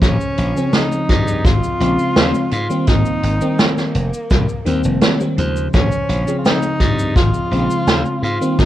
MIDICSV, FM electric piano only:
0, 0, Header, 1, 2, 480
1, 0, Start_track
1, 0, Tempo, 714286
1, 13, Time_signature, 4, 2, 24, 8
1, 5814, End_track
2, 0, Start_track
2, 0, Title_t, "FM electric piano"
2, 0, Program_c, 0, 5
2, 0, Note_on_c, 0, 49, 84
2, 0, Note_on_c, 0, 53, 75
2, 0, Note_on_c, 0, 56, 76
2, 0, Note_on_c, 0, 72, 90
2, 341, Note_off_c, 0, 49, 0
2, 345, Note_off_c, 0, 53, 0
2, 348, Note_off_c, 0, 56, 0
2, 352, Note_off_c, 0, 72, 0
2, 364, Note_on_c, 0, 49, 92
2, 372, Note_on_c, 0, 53, 84
2, 377, Note_on_c, 0, 68, 84
2, 384, Note_on_c, 0, 60, 100
2, 1179, Note_off_c, 0, 49, 0
2, 1183, Note_off_c, 0, 53, 0
2, 1186, Note_off_c, 0, 68, 0
2, 1189, Note_off_c, 0, 60, 0
2, 1207, Note_on_c, 0, 49, 100
2, 1210, Note_on_c, 0, 53, 89
2, 1212, Note_on_c, 0, 56, 92
2, 1217, Note_on_c, 0, 60, 107
2, 1676, Note_off_c, 0, 49, 0
2, 1678, Note_off_c, 0, 53, 0
2, 1679, Note_off_c, 0, 56, 0
2, 1681, Note_off_c, 0, 60, 0
2, 1810, Note_on_c, 0, 51, 96
2, 1813, Note_on_c, 0, 55, 85
2, 1816, Note_on_c, 0, 58, 87
2, 1819, Note_on_c, 0, 60, 107
2, 2263, Note_off_c, 0, 51, 0
2, 2265, Note_off_c, 0, 55, 0
2, 2267, Note_off_c, 0, 58, 0
2, 2268, Note_off_c, 0, 60, 0
2, 2288, Note_on_c, 0, 51, 97
2, 2291, Note_on_c, 0, 55, 87
2, 2295, Note_on_c, 0, 58, 88
2, 2299, Note_on_c, 0, 60, 110
2, 2635, Note_off_c, 0, 51, 0
2, 2637, Note_off_c, 0, 55, 0
2, 2639, Note_off_c, 0, 58, 0
2, 2641, Note_off_c, 0, 60, 0
2, 3126, Note_on_c, 0, 51, 98
2, 3129, Note_on_c, 0, 55, 91
2, 3133, Note_on_c, 0, 58, 94
2, 3136, Note_on_c, 0, 60, 109
2, 3463, Note_off_c, 0, 51, 0
2, 3464, Note_off_c, 0, 55, 0
2, 3467, Note_off_c, 0, 58, 0
2, 3468, Note_off_c, 0, 60, 0
2, 3491, Note_on_c, 0, 51, 88
2, 3494, Note_on_c, 0, 55, 80
2, 3498, Note_on_c, 0, 58, 79
2, 3501, Note_on_c, 0, 60, 98
2, 3593, Note_off_c, 0, 51, 0
2, 3595, Note_off_c, 0, 55, 0
2, 3597, Note_off_c, 0, 58, 0
2, 3598, Note_off_c, 0, 60, 0
2, 3603, Note_on_c, 0, 49, 82
2, 3610, Note_on_c, 0, 53, 76
2, 3617, Note_on_c, 0, 56, 74
2, 3623, Note_on_c, 0, 72, 91
2, 4182, Note_off_c, 0, 49, 0
2, 4185, Note_off_c, 0, 53, 0
2, 4188, Note_off_c, 0, 56, 0
2, 4192, Note_off_c, 0, 72, 0
2, 4205, Note_on_c, 0, 49, 89
2, 4211, Note_on_c, 0, 53, 86
2, 4217, Note_on_c, 0, 68, 83
2, 4224, Note_on_c, 0, 60, 100
2, 5020, Note_off_c, 0, 49, 0
2, 5023, Note_off_c, 0, 53, 0
2, 5026, Note_off_c, 0, 68, 0
2, 5029, Note_off_c, 0, 60, 0
2, 5047, Note_on_c, 0, 49, 102
2, 5050, Note_on_c, 0, 53, 89
2, 5054, Note_on_c, 0, 56, 89
2, 5057, Note_on_c, 0, 60, 109
2, 5516, Note_off_c, 0, 49, 0
2, 5518, Note_off_c, 0, 53, 0
2, 5520, Note_off_c, 0, 56, 0
2, 5521, Note_off_c, 0, 60, 0
2, 5648, Note_on_c, 0, 51, 93
2, 5651, Note_on_c, 0, 55, 90
2, 5655, Note_on_c, 0, 58, 84
2, 5658, Note_on_c, 0, 60, 104
2, 5814, Note_off_c, 0, 51, 0
2, 5814, Note_off_c, 0, 55, 0
2, 5814, Note_off_c, 0, 58, 0
2, 5814, Note_off_c, 0, 60, 0
2, 5814, End_track
0, 0, End_of_file